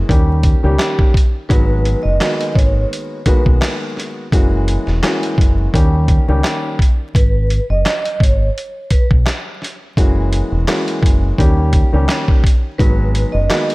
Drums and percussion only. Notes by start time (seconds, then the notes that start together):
0.09 kick, closed hi-hat
0.43 kick, closed hi-hat
0.79 snare, clap, closed hi-hat
0.99 kick
1.14 kick, closed hi-hat
1.50 kick, closed hi-hat
1.85 closed hi-hat
2.21 snare, clap, closed hi-hat
2.41 closed hi-hat
2.56 kick, closed hi-hat
2.93 closed hi-hat
3.26 kick, closed hi-hat
3.46 kick
3.62 snare, clap, closed hi-hat
3.97 snare, closed hi-hat
4.32 kick, closed hi-hat
4.68 closed hi-hat
4.87 snare
5.03 snare, clap, closed hi-hat
5.23 closed hi-hat
5.38 kick, closed hi-hat
5.74 kick, closed hi-hat
6.08 kick, closed hi-hat
6.44 snare, clap, closed hi-hat
6.79 kick, closed hi-hat
7.15 kick, closed hi-hat
7.50 closed hi-hat
7.86 snare, clap, closed hi-hat
8.05 closed hi-hat
8.20 kick, closed hi-hat
8.58 closed hi-hat
8.90 kick, closed hi-hat
9.11 kick
9.26 snare, clap, closed hi-hat
9.62 snare, closed hi-hat
9.97 kick, closed hi-hat
10.33 closed hi-hat
10.68 snare, clap, closed hi-hat
10.88 closed hi-hat
11.03 kick, closed hi-hat
11.38 kick, closed hi-hat
11.73 kick, closed hi-hat
12.09 snare, clap, closed hi-hat
12.28 kick
12.44 kick, closed hi-hat
12.79 kick, closed hi-hat
13.15 closed hi-hat
13.50 snare, clap, closed hi-hat
13.70 closed hi-hat